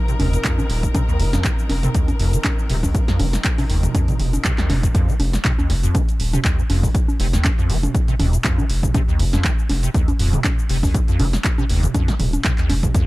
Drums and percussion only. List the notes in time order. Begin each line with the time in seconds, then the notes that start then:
0.08 closed hi-hat, shaker
0.20 mid tom, open hi-hat, high conga
0.33 closed hi-hat, shaker
0.45 kick, clap, closed hi-hat, shaker
0.58 high conga, shaker
0.70 open hi-hat
0.83 kick, closed hi-hat, shaker
0.95 kick, closed hi-hat, high conga, shaker
1.09 shaker
1.20 open hi-hat
1.33 snare, closed hi-hat, high conga, shaker
1.44 kick, clap, closed hi-hat, shaker
1.59 shaker
1.70 snare, open hi-hat, high conga
1.83 closed hi-hat, mid tom, shaker
1.95 kick, closed hi-hat, shaker
2.08 closed hi-hat, high conga, shaker
2.19 open hi-hat
2.33 closed hi-hat, shaker
2.44 kick, clap, closed hi-hat, high conga, shaker
2.59 shaker
2.70 open hi-hat
2.83 kick, open hi-hat, high conga, shaker
2.95 kick, closed hi-hat, shaker
3.08 snare, closed hi-hat, shaker
3.20 open hi-hat, high conga
3.33 snare, closed hi-hat, shaker
3.44 kick, clap, closed hi-hat, shaker
3.58 open hi-hat, high conga, shaker
3.70 open hi-hat
3.83 closed hi-hat, mid tom, shaker
3.95 kick, closed hi-hat, high conga, shaker
4.08 closed hi-hat, mid tom, shaker
4.20 mid tom, open hi-hat
4.33 closed hi-hat, high conga, shaker
4.45 kick, clap, closed hi-hat, shaker
4.58 snare, clap, closed hi-hat, shaker
4.70 snare, mid tom, open hi-hat, high conga
4.83 kick, closed hi-hat, shaker
4.95 kick, closed hi-hat, shaker
5.09 shaker
5.20 open hi-hat, high conga
5.33 snare, closed hi-hat, shaker
5.45 kick, clap, closed hi-hat, shaker
5.59 high conga, shaker
5.70 snare, open hi-hat
5.83 closed hi-hat, shaker
5.95 kick, closed hi-hat, high conga, shaker
6.09 closed hi-hat, shaker
6.20 open hi-hat
6.33 closed hi-hat, mid tom, high conga, shaker
6.45 kick, clap, closed hi-hat, shaker
6.59 shaker
6.70 open hi-hat, high conga
6.83 kick, open hi-hat, shaker
6.95 kick, closed hi-hat, shaker
7.08 high conga, shaker
7.20 open hi-hat
7.33 snare, closed hi-hat, shaker
7.45 kick, clap, closed hi-hat, high conga, shaker
7.59 shaker
7.70 open hi-hat
7.83 closed hi-hat, mid tom, high conga, shaker
7.95 kick, closed hi-hat, shaker
8.08 closed hi-hat, shaker
8.20 mid tom, open hi-hat, high conga
8.33 closed hi-hat, shaker
8.44 kick, clap, closed hi-hat, shaker
8.58 high conga, shaker
8.70 open hi-hat
8.83 kick, closed hi-hat, mid tom, shaker
8.94 kick, closed hi-hat, high conga, shaker
9.09 shaker
9.19 open hi-hat
9.33 snare, closed hi-hat, high conga, shaker
9.44 kick, clap, closed hi-hat, shaker
9.59 shaker
9.70 snare, open hi-hat, high conga
9.83 closed hi-hat, shaker
9.94 kick, closed hi-hat, shaker
10.08 closed hi-hat, high conga, shaker
10.19 open hi-hat
10.33 closed hi-hat, mid tom, shaker
10.44 kick, clap, closed hi-hat, high conga, shaker
10.59 shaker
10.69 open hi-hat
10.83 kick, open hi-hat, high conga, shaker
10.94 kick, closed hi-hat, shaker
11.08 closed hi-hat, shaker
11.20 open hi-hat, high conga
11.33 snare, closed hi-hat, shaker
11.44 kick, clap, closed hi-hat, shaker
11.58 high conga, shaker
11.70 open hi-hat
11.83 closed hi-hat, mid tom, shaker
11.94 kick, closed hi-hat, high conga, shaker
12.08 snare, closed hi-hat, shaker
12.20 mid tom, open hi-hat
12.33 closed hi-hat, high conga, shaker
12.45 kick, clap, closed hi-hat, shaker
12.58 clap, closed hi-hat, shaker
12.70 snare, open hi-hat, high conga
12.83 kick, closed hi-hat, mid tom, shaker
12.95 kick, closed hi-hat, shaker